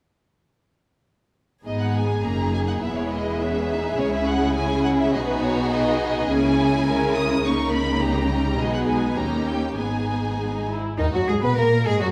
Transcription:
1.65 double bass section G#1, cello section G#2, viola section G#3 B3, violin section D#4 G#4 D#5
1.82 violin section F#5
1.96 violin section G#5
2.24 double bass section F#1, cello section F#2, viola section A#3, violin section D#4 A#5
2.53 violin section G#5
2.67 violin section F#5
2.82 double bass section E1, cello section E2, viola section G#3 B3, violin section E4 E5
2.95 violin section C#5
3.10 violin section D#5
3.40 violin section C#4 G#4 E5
3.69 violin section D#4
3.97 double bass section C#2, cello section C#3, viola section G#3 C#4, violin section E4 C#5
4.13 violin section E5
4.27 violin section F#5
4.55 viola section C#4, violin section G#4 G#5
4.83 violin section F#5
4.99 violin section E5
5.12 double bass section B1, cello section B2, viola section B3 D#4, violin section F#4 G#4 D#5
5.27 violin section B4
5.42 violin section C#5
5.71 viola section B3 D#4, violin section D#5
6.02 viola section D#4
6.31 double bass section C#2, cello section C#3, viola section A#3 C#4, violin section E4 G#5
6.60 viola section A#3
6.88 viola section G#3 C#4, violin section A#4
7.17 viola section G#3, violin section D#6
7.45 double bass section C#2, cello section C#3, viola section A#3, violin section D#4 A#4 C#6
7.73 violin section B5
8.02 viola section A#3, violin section G4 A#5
8.31 viola section G3
8.59 double bass section B1, cello section B2, viola section G#3 B3, violin section D#4 G#4 D#5
8.74 violin section F#5
8.88 violin section G#5
9.16 cello section D#2, double bass section D#2, viola section A#3 C#4, violin section D#4 G4 A#5
9.46 violin section G5
9.76 double bass section G#1, cello section G#2, viola section B3, violin section D#4 G#4 G#5
10.39 viola section B3
10.54 viola section D#4
10.69 viola section E4
10.98 double bass section D#2, viola section D#3, french horn section D#3, cello section D#4, violin section D#4
11.13 double bass section F#2, viola section F#3, french horn section F#3, violin section F#4, cello section F#4
11.28 double bass section G#2, french horn section G#3, viola section G#3, violin section G#4, cello section G#4
11.42 double bass section B2, viola section B3, french horn section B3, violin section B4, cello section B4
11.56 double bass section A#2, viola section A#3, french horn section A#3, violin section A#4, cello section A#4
11.85 double bass section G#2, viola section G#3, french horn section G#3, violin section G#4, cello section G#4
12.00 double bass section F#2, viola section F#3, french horn section F#3, violin section F#4, cello section F#4

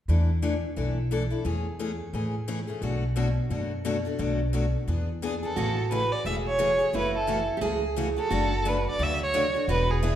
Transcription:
0.08 upright bass E2, steel-string acoustic guitar E3 A3 D4 E4 A4
0.42 steel-string acoustic guitar E3 A3 D4 E4 A4
0.76 upright bass B1, steel-string acoustic guitar E3 A3 D4 E4 A4
1.11 steel-string acoustic guitar E3 A3 D4 E4 A4
1.30 steel-string acoustic guitar D4 E4 A4
1.45 upright bass E2, steel-string acoustic guitar E3 A3 C#4 G#4
1.79 steel-string acoustic guitar E3 A3 C#4 G#4
2.13 upright bass A2, steel-string acoustic guitar E3 A3 C#4 G#4
2.48 steel-string acoustic guitar E3 A3 C#4 G#4
2.67 steel-string acoustic guitar A3 C#4 G#4
2.82 upright bass B1, steel-string acoustic guitar B2 F#3 A3 D4 F#4
3.16 steel-string acoustic guitar B2 F#3 A3 D4 F#4
3.50 upright bass F#2, steel-string acoustic guitar B2 F#3 A3 D4 F#4
3.85 steel-string acoustic guitar B2 F#3 A3 D4 F#4
4.05 steel-string acoustic guitar A3 D4 F#4
4.19 upright bass B1, steel-string acoustic guitar B2 F#3 A3 D4 F#4
4.53 steel-string acoustic guitar B2 F#3 A3 D4 F#4
4.88 upright bass E2, steel-string acoustic guitar E3 B3 D4 G#4
5.22 steel-string acoustic guitar E3 B3 D4 G#4
5.43 steel-string acoustic guitar B3 D4 G#4, violin A4
5.56 upright bass A1, steel-string acoustic guitar C#3 E3 A3 C#4 F#4 G#4
5.91 steel-string acoustic guitar C#3 E3 A3 C#4 G#4, violin B4
6.12 violin D5
6.25 upright bass E1, steel-string acoustic guitar C#3 E3 A3 C#4 G#4, violin E5
6.48 violin C#5
6.59 steel-string acoustic guitar C#3 E3 A3 C#4 G#4
6.79 steel-string acoustic guitar A3 C#4 G#4
6.93 upright bass F#1, steel-string acoustic guitar C#3 E3 A3 C#4 E4 F#4
6.97 violin B4
7.17 violin A4
7.27 steel-string acoustic guitar C#3 E3 A3 C#4 F#4
7.57 steel-string acoustic guitar G4
7.61 upright bass C#2, steel-string acoustic guitar C#3 E3 A3 C#4 F#4 G#4
7.96 steel-string acoustic guitar C#3 E3 A3 C#4 F#4
8.16 steel-string acoustic guitar A3 C#4 F#4, violin A4
8.30 upright bass F#1, steel-string acoustic guitar C#3 F#3 A3 D4 F#4
8.65 steel-string acoustic guitar C#3 F#3 A3 D4 F#4, violin B4
8.90 violin D5
8.99 upright bass D2, steel-string acoustic guitar C#3 F#3 A3 D4 F#4
9.03 violin E5
9.23 violin C#5
9.34 steel-string acoustic guitar C#3 F#3 A3 D4 F#4
9.54 steel-string acoustic guitar A3 D4 F#4
9.68 upright bass E1, steel-string acoustic guitar E3 B3 D4 F#4 G#4, violin B4
9.91 violin G#4
10.03 steel-string acoustic guitar E3 B3 D4 E4 G#4

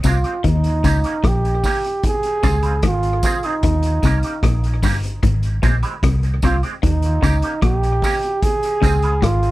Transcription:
0.04 fingered electric bass C2, clean electric guitar C3 G#3 C4 G4, kick, closed hi-hat, tambourine
0.08 trombone F4
0.24 clean electric guitar G#3 C4 G4, closed hi-hat
0.44 fingered electric bass D#2, clean electric guitar D#3, kick, closed hi-hat
0.48 trombone D#4
0.64 closed hi-hat
0.84 fingered electric bass C#2, clean electric guitar C#3 A#3 C#4 G4, kick, closed hi-hat, tambourine
1.04 clean electric guitar A#3 C#4 G4, closed hi-hat
1.24 fingered electric bass A#1, clean electric guitar A#2, kick, cross-stick, closed hi-hat
1.28 trombone G4
1.45 closed hi-hat
1.64 clean electric guitar A#3 C#4 G4, kick, open hi-hat, tambourine
1.84 closed hi-hat
2.03 trombone G#4, kick, closed hi-hat
2.23 closed hi-hat
2.43 fingered electric bass C#2, clean electric guitar C#3 C4 F4 G#4, kick, closed hi-hat, tambourine
2.63 clean electric guitar C4 F4 G#4, closed hi-hat, high woodblock
2.83 fingered electric bass G#1, clean electric guitar G#2, kick, cross-stick, closed hi-hat
2.87 trombone F4
3.03 closed hi-hat
3.23 clean electric guitar C4 F4 G#4, kick, closed hi-hat, tambourine
3.43 clean electric guitar C4 F4 G#4, trombone D#4, closed hi-hat
3.63 fingered electric bass D#2, clean electric guitar D#3, kick, closed hi-hat
3.83 closed hi-hat
4.03 fingered electric bass C2, clean electric guitar C3 A#3 C#4 G4, kick, closed hi-hat, tambourine
4.23 clean electric guitar A#3 C#4 G4, closed hi-hat
4.43 fingered electric bass A#1, clean electric guitar A#2, kick, cross-stick, closed hi-hat
4.64 closed hi-hat
4.83 fingered electric bass G1, clean electric guitar G2 A#3 C#4 G4, kick, open hi-hat, tambourine
5.03 closed hi-hat
5.23 fingered electric bass G#1, clean electric guitar G#2, kick, closed hi-hat
5.43 closed hi-hat
5.62 fingered electric bass A#1, clean electric guitar A#2 G#3 C4 G4, kick, closed hi-hat, tambourine
5.83 clean electric guitar G#3 C4 G4, closed hi-hat, high woodblock
6.03 fingered electric bass C2, clean electric guitar C3, kick, cross-stick, closed hi-hat
6.23 closed hi-hat
6.42 fingered electric bass C2, clean electric guitar C3 G#3 C4 G4, trombone F4, kick, closed hi-hat, tambourine
6.63 clean electric guitar G#3 C4 G4, closed hi-hat
6.83 fingered electric bass D#2, clean electric guitar D#3, trombone D#4, kick, closed hi-hat
7.02 closed hi-hat
7.22 fingered electric bass C#2, clean electric guitar C#3 A#3 C#4 G4, kick, closed hi-hat, tambourine
7.42 clean electric guitar A#3 C#4 G4, closed hi-hat
7.62 fingered electric bass A#1, clean electric guitar A#2, trombone G4, kick, cross-stick, closed hi-hat
7.83 closed hi-hat
8.02 clean electric guitar A#3 C#4 G4, kick, open hi-hat, tambourine
8.23 closed hi-hat
8.43 trombone G#4, kick, closed hi-hat
8.63 closed hi-hat
8.82 fingered electric bass C#2, clean electric guitar C#3 C4 F4 G#4, kick, closed hi-hat, tambourine
9.02 clean electric guitar C4 F4 G#4, closed hi-hat, high woodblock
9.22 fingered electric bass G#1, clean electric guitar G#2, trombone F4, kick, cross-stick, closed hi-hat
9.43 closed hi-hat

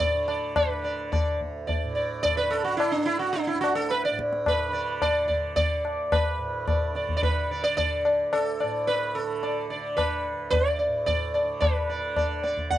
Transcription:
Already playing: tanpura D2 A2 D3
0.00 sitar D5, tabla tin, tabla ge
0.12 tanpura D3
0.28 sitar D5, tabla na
0.56 sitar B4, tabla na, tabla ge
0.69 tanpura D3
0.84 sitar D5
1.12 sitar D5, tabla na, tabla ge
1.26 tanpura D2
1.41 tabla ge
1.67 sitar D5, tabla tin, tabla ge
1.83 tanpura A2
1.95 sitar D5
2.23 sitar D5, tabla tin, tabla ge
2.37 tanpura D3, sitar B4
2.51 sitar A4
2.64 sitar F#4
2.77 sitar E4, tabla na
2.92 sitar D4
2.98 tanpura D3
3.05 sitar E4
3.19 sitar F#4
3.33 sitar D4, tabla tin
3.47 sitar E4
3.54 tanpura D2
3.61 sitar F#4, tabla na
3.75 sitar A4
3.90 sitar B4, tabla te
4.05 sitar D5, tabla te
4.11 tanpura A2
4.19 tabla ke
4.33 tabla te
4.46 sitar B4, tabla na, tabla ge
4.68 tanpura D3
4.73 sitar D5
5.02 sitar D5, tabla na, tabla ge
5.25 tanpura D3, sitar D5
5.29 tabla ge
5.56 sitar D5, tabla tin, tabla ge
5.81 tanpura D2, tabla na
6.12 sitar B4, tabla na, tabla ge
6.37 tanpura A2
6.67 sitar D5, tabla na, tabla ge
6.94 tanpura D3, sitar D5, tabla te
7.09 tabla ge
7.17 sitar D5
7.23 sitar B4, tabla tin, tabla ge
7.50 tanpura D3, sitar D5
7.64 sitar D5
7.77 sitar D5, tabla tin, tabla ge
8.05 tanpura D2, sitar D5, tabla na
8.33 sitar A4, tabla na
8.60 tanpura A2, sitar D5, tabla na
8.87 sitar B4, tabla tin
9.15 tanpura D3, sitar A4
9.43 sitar D5, tabla na
9.70 sitar D5
9.75 tanpura D3
9.97 sitar B4, tabla na, tabla ge
10.32 tanpura D2
10.50 sitar D5, tabla tin, tabla ge
10.79 sitar D5
10.87 tanpura A2
11.06 sitar D5, tabla tin, tabla ge
11.34 sitar D5, tabla na
11.43 tanpura D3
11.61 sitar B4, tabla na, tabla ge
11.89 sitar D5
11.98 tanpura D3
12.16 sitar D5, tabla na, tabla ge
12.43 sitar D5, tabla te
12.54 tanpura D2, tabla ge
12.70 sitar F#5, tabla tin, tabla ge

